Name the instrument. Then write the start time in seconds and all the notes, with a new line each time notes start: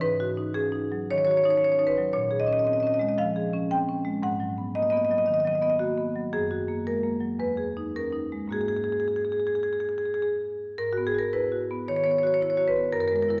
marimba
0.01 G#2 B4
0.20 F#4
0.37 D#4
0.54 C#4 G#4
0.72 D#4
0.92 F#3
1.11 D#3 C#5
1.18 C#5
1.25 F#4 C#5
1.31 C#5
1.37 C#5
1.44 D#4 C#5
1.50 C#5
1.57 C#5
1.63 C#4 C#5
1.72 C#5
1.79 D#4 C#5
1.87 B4
1.98 F#3
2.13 A#2 C#5
2.31 G#4
2.40 D#5
2.47 C#4 D#5
2.53 D#5
2.59 D#5
2.65 C4 D#5
2.73 D#5
2.80 C#4 D#5
2.87 D#5
2.94 D#5
2.99 G#3 D#5
3.09 D#5
3.18 F3 F5
3.36 G#4
3.54 C#4
3.71 C4 G5
3.89 C#4
4.05 G#3
4.22 G#2 F#5
4.40 F#3
4.58 B3
4.75 A#3 D#5
4.83 D#5
4.90 B3 D#5
4.97 D#5
5.05 D#5
5.11 F#3 D#5
5.18 D#5
5.26 D#3 D#5
5.34 D#5
5.40 D#5
5.45 F#3 D#5
5.55 D#5
5.62 B3 D#5
5.70 D#5
5.79 A#3 F#4
5.98 B3
6.16 F#3
6.33 F#2 G#4
6.51 F#4
6.68 A#3
6.87 G#3 A#4
7.03 A#3
7.20 F#3
7.39 E2 B4
7.57 G#4
7.77 D#4
7.96 C#4 A#4
8.13 D#4
8.32 G#3
8.48 G#2 A#3 F#4
8.52 G#4
8.61 G#4
8.68 G#4
8.76 G#4
8.84 G#4
8.92 G#4
9.00 G#4
9.08 G#4
9.16 G#4
9.25 G#4
9.32 G#4
9.40 G#4
9.47 G#4
9.55 G#4
9.63 G#4
9.73 G#4
9.80 G#4
9.89 G#4
9.98 G#4
10.05 G#4
10.14 G#4
10.22 G#4
10.78 G#2 A#4
10.93 F#4
10.97 B3
11.07 G#4
11.14 F#4
11.19 A#4
11.33 E4 B4
11.52 F#4
11.71 B3
11.88 D#3 C#5
11.96 C#5
12.04 B3 C#5
12.11 C#5
12.18 C#5
12.23 F#4 C#5
12.34 C#5
12.41 E4 C#5
12.50 C#5
12.57 F#4 C#5
12.68 B4
12.76 B3
12.93 F#2 A#4
13.00 A#4
13.08 G#3 A#4
13.16 A#4
13.22 A#4
13.28 E4 A#4